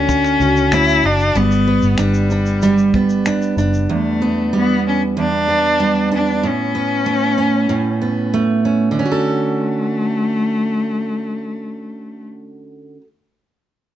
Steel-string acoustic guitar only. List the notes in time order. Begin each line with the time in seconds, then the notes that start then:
Already playing: D3 C#4 F#4
0.42 F#4
0.74 C#4
1.35 G3
1.67 B3
1.98 D4
2.32 D4
2.63 G3
2.95 B3
3.27 D4
3.58 D4
3.89 E2
4.22 B3
4.53 G3
5.17 E2
5.48 B3
5.80 G3
6.12 D4
6.43 A2
6.75 B3
7.06 A3
7.38 C#4
7.69 A2
8.02 B3
8.34 A3
8.65 C#4
8.91 D3
8.99 C#4
9.05 F#4
9.11 A4